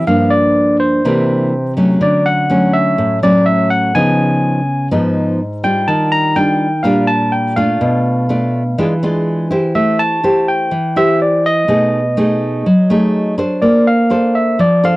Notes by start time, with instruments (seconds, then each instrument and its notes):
0.07 nylon-string guitar G2 F3 A#3 D4, tine electric piano F5
0.30 tine electric piano D5
0.80 tine electric piano C5
1.05 nylon-string guitar C3 E3 A#3 D4
1.77 nylon-string guitar F#3 A3 C#4
2.01 nylon-string guitar D3, tine electric piano D5
2.26 tine electric piano F#5
2.50 nylon-string guitar F#3 A3 C#4
2.73 tine electric piano E5
2.98 nylon-string guitar A2
3.23 nylon-string guitar F#3 A3 C#4, tine electric piano D5
3.46 tine electric piano E5
3.70 tine electric piano F#5
3.95 nylon-string guitar C#3 F3 B3 D#4, tine electric piano G#5
4.91 nylon-string guitar G#2 F3 B3 D#4
5.63 nylon-string guitar G3 D4 F4, tine electric piano G5
5.88 nylon-string guitar D#3, tine electric piano A5
6.12 tine electric piano A#5
6.36 nylon-string guitar G3 D4 F4, tine electric piano G5
6.83 nylon-string guitar A#2 G3 D4 F4, tine electric piano F5
7.08 tine electric piano A5
7.32 tine electric piano G5
7.56 nylon-string guitar A3 D4 F4, tine electric piano F5
7.81 nylon-string guitar B2
8.29 nylon-string guitar A3 D4 F4
8.78 nylon-string guitar E3 G#3 D4 F4
9.03 nylon-string guitar G#3 D4 F4
9.51 nylon-string guitar E4 G4 C5
9.75 nylon-string guitar A3, tine electric piano E5
9.99 tine electric piano A5
10.23 nylon-string guitar E4 G4 C5
10.48 tine electric piano G5
10.71 nylon-string guitar E3
10.96 nylon-string guitar E4 G4 C5, tine electric piano E5
11.22 tine electric piano D5
11.46 tine electric piano D#5
11.68 nylon-string guitar B2 A3 D#4 G#4
12.17 nylon-string guitar A3 D#4 G#4
12.66 nylon-string guitar F#3
12.90 nylon-string guitar A3 D#4 G#4
13.38 nylon-string guitar D4 A4 C5
13.62 nylon-string guitar A#3, tine electric piano D5
13.87 tine electric piano F5
14.10 nylon-string guitar D4 A4 C5
14.35 tine electric piano E5
14.59 nylon-string guitar F3, tine electric piano D5
14.83 nylon-string guitar D4 A4 C5, tine electric piano F5